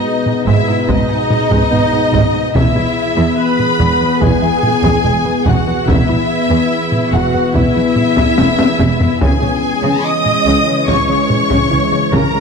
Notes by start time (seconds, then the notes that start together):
Already playing: B2 B3 D#4 G#4 B4 D#5
0.26 taiko low-mid
0.46 G#1 G#2 G#3 E4 E5
0.67 G#2 D#4
0.87 G#1 G#2 G#3 D#4 D#5, taiko
1.08 G#2 G#4
1.30 taiko low-mid
1.50 G#2 G#3, taiko
1.71 G#1 G#2 B3
1.92 G#2 D#4
2.13 G#1 G#2 G#3, taiko
2.34 G#2 D#4
2.55 E1 E2 E3 B3 E4 G#4 B4 E5, taiko
2.75 E2 E4, taiko low-mid
3.17 E2 E3
3.38 B4 B5
3.59 taiko low-mid
3.80 E1 E2 E3
4.01 E2 B3
4.21 E1 E2 E3 G#4 G#5, taiko
4.42 E2 E4
4.63 taiko low-mid
4.83 E2 E3, taiko
5.04 E1 E2 G#3
5.25 E2 B3
5.46 E1 E2 E3 F#4 F#5, taiko
5.67 E2 B3
5.87 E1 E2 E3 B3 E4 G#4 B4 E5, taiko
6.09 E2 E4, taiko low-mid
6.50 E2 E3
6.92 taiko low-mid
7.13 E1 E2 E3 F#4 F#5
7.34 E2 B3
7.54 E1 E2 E3 E4 E5, taiko
7.76 E2 E4
7.96 taiko low-mid
8.17 E2 E3, taiko
8.38 E1 E2 G#3, taiko high
8.59 E2 B3, taiko high
8.79 E1 E2 E3, taiko high
9.00 E2 B3, taiko low
9.21 C#2 C#3 E3 G#3 C#4 G#4 C#5 G#5, taiko
9.42 C#3 C#4, taiko low-mid
9.83 C#3
10.05 D#5 D#6
10.26 taiko low-mid
10.46 C#2 C#3
10.67 C#3 G#3
10.88 C#2 C#3 C#5 C#6, taiko
11.09 C#3 C#4
11.30 taiko low-mid
11.50 C#3, taiko
11.71 C#2 C#3 E3
11.92 C#3 G#3
12.12 C#2 C#3 A#4 A#5, taiko
12.33 C#3 G#3